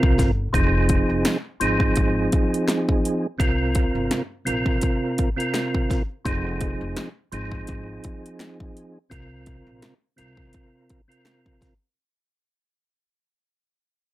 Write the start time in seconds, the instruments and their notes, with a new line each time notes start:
Already playing: tonewheel organ C3 C4 F4 A#4
0.03 upright bass C2, kick
0.18 upright bass G1, kick, snare, closed hi-hat
0.53 upright bass F1, tonewheel organ F3 C4 D#4 G#4, kick, closed hi-hat
0.89 kick, closed hi-hat
1.10 upright bass F1
1.25 finger snap, snare, closed hi-hat
1.60 upright bass G#1, tonewheel organ F3 C4 D#4 G#4, closed hi-hat
1.80 kick
1.96 upright bass G#1, kick, closed hi-hat
2.32 kick, closed hi-hat
2.54 closed hi-hat
2.68 finger snap, snare, closed hi-hat
2.89 kick
3.05 closed hi-hat
3.38 upright bass C2, tonewheel organ C3 C4 F4 A#4, kick, closed hi-hat
3.75 kick, closed hi-hat
3.95 upright bass G1
4.11 finger snap, snare, closed hi-hat
4.45 upright bass A#1, tonewheel organ C3 C4 F4 A#4, closed hi-hat
4.66 kick
4.81 kick, closed hi-hat
5.18 kick, closed hi-hat
5.36 tonewheel organ C3 C4 F4 A#4
5.40 closed hi-hat
5.54 finger snap, snare, closed hi-hat
5.75 kick
5.90 kick, snare, closed hi-hat
6.25 upright bass F1, tonewheel organ F3 C4 D#4 G#4, kick, closed hi-hat
6.61 kick, closed hi-hat
6.81 upright bass F1
6.96 finger snap, snare, closed hi-hat
7.32 upright bass G#1, tonewheel organ F3 C4 D#4 G#4, closed hi-hat
7.52 kick
7.67 upright bass G#1, kick, closed hi-hat
8.04 kick, closed hi-hat
8.26 closed hi-hat
8.39 finger snap, snare, closed hi-hat
8.60 kick
8.77 closed hi-hat
9.09 upright bass C2, tonewheel organ C3 C4 F4 A#4, kick, closed hi-hat
9.46 kick, closed hi-hat
9.67 upright bass A#1
9.82 finger snap, snare, closed hi-hat
10.16 upright bass C2, tonewheel organ C3 C4 F4 A#4, closed hi-hat
10.37 kick
10.53 kick, closed hi-hat
10.90 kick, closed hi-hat
11.07 tonewheel organ C3 C4 F4 A#4
11.12 closed hi-hat
11.25 finger snap, snare, closed hi-hat
11.46 kick
11.61 kick, snare, closed hi-hat